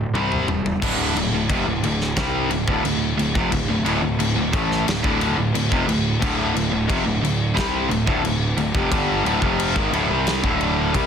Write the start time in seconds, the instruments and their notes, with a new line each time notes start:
Already playing: distorted electric guitar D2 A2
0.14 picked electric bass C2, distorted electric guitar C3 G3 C4, mid tom
0.32 floor tom
0.47 picked electric bass E1, distorted electric guitar C3 G3, floor tom
0.66 floor tom
0.82 picked electric bass D1, distorted electric guitar D2 A2 D3, kick, crash
1.15 picked electric bass D1, distorted electric guitar D2 A2, crash
1.31 picked electric bass D1, distorted electric guitar D2 A2
1.49 picked electric bass F1, distorted electric guitar F2 C3, kick, crash
1.65 picked electric bass D1, distorted electric guitar D2 A2
1.83 picked electric bass D1, distorted electric guitar D2 A2, crash
2.01 snare
2.16 picked electric bass C2, distorted electric guitar C3 G3 C4, kick, snare, crash
2.50 picked electric bass D1, distorted electric guitar D2 A2, crash
2.67 picked electric bass D1, distorted electric guitar D2 A2, kick
2.84 picked electric bass D1, distorted electric guitar D2 A2, crash
3.17 picked electric bass D1, distorted electric guitar D2 A2, crash
3.34 picked electric bass F1, distorted electric guitar F2 C3, kick
3.51 picked electric bass D1, distorted electric guitar D2 A2, kick, crash
3.68 picked electric bass D1, distorted electric guitar D2 A2
3.85 picked electric bass D1, distorted electric guitar D2 A2, crash
4.02 picked electric bass D1, distorted electric guitar D2 A2
4.19 picked electric bass D1, distorted electric guitar D2 A2, crash
4.36 picked electric bass D1, distorted electric guitar D2 A2
4.53 picked electric bass A1, distorted electric guitar A2 E3 A3, kick, crash
4.72 snare
4.86 picked electric bass D1, distorted electric guitar D2 A2, snare, crash
5.03 picked electric bass D1, distorted electric guitar D2 A2 D3, kick
5.21 crash
5.36 picked electric bass D1, distorted electric guitar D2 A2
5.53 picked electric bass D1, distorted electric guitar D2 A2, crash
5.69 picked electric bass F1, distorted electric guitar F2 C3, kick
5.87 picked electric bass D1, distorted electric guitar D2 A2, crash
6.20 picked electric bass D1, distorted electric guitar D2 A2 D3, kick, crash
6.54 picked electric bass D1, distorted electric guitar D2 A2, crash
6.70 picked electric bass D1, distorted electric guitar D2 A2
6.87 picked electric bass F1, distorted electric guitar F2 C3, kick, crash
7.04 picked electric bass D1, distorted electric guitar D2 A2
7.21 picked electric bass D1, distorted electric guitar D2 A2, crash
7.55 picked electric bass C2, distorted electric guitar C3 G3 C4, kick, crash
7.59 snare
7.90 picked electric bass D1, distorted electric guitar D2 A2, crash
8.07 picked electric bass D1, distorted electric guitar D2 A2, kick
8.23 picked electric bass D1, distorted electric guitar D2 A2, crash
8.57 picked electric bass D1, distorted electric guitar D2 A2, crash
8.75 picked electric bass F1, distorted electric guitar F2 C3, kick
8.91 picked electric bass G1, distorted electric guitar G2 D3 G3, kick, crash
9.24 picked electric bass D1, distorted electric guitar D2 A2, crash
9.42 picked electric bass F1, distorted electric guitar F2 C3 F3, kick
9.60 crash
9.76 picked electric bass G#1, distorted electric guitar G#2 D#3, kick
9.92 picked electric bass D1, distorted electric guitar D2 A2, crash
10.08 picked electric bass C2, distorted electric guitar C3 G3 C4
10.27 snare, crash
10.43 picked electric bass D1, distorted electric guitar D2 A2 D3, kick
10.61 crash
10.93 picked electric bass C2, distorted electric guitar C3 G3, kick, crash